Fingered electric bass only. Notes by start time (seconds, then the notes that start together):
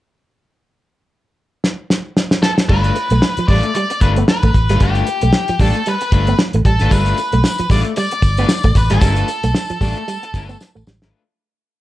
2.70 G1
3.11 B1
3.37 muted fingered electric bass stroke
3.49 A1
4.02 G1
4.43 A1
4.54 A1
4.69 G#1
4.81 G1
5.23 B1
5.49 muted fingered electric bass stroke
5.59 A1
6.12 G1
6.54 A1
6.65 A1
6.80 G#1
6.91 G1
7.33 B1
7.60 muted fingered electric bass stroke
7.70 A1
8.23 G1
8.65 A1
8.75 A1
8.91 G#1
9.02 G1
9.44 B1
9.70 muted fingered electric bass stroke
9.81 A1
10.34 G1
10.76 A1
10.87 A1
11.02 G#1